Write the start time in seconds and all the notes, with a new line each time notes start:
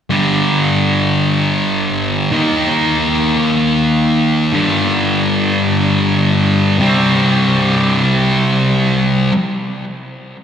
0.10 G2 D3 G3
2.32 D#3 A#3 D#4
4.53 G2 D3 G3
6.79 C3 G3 C4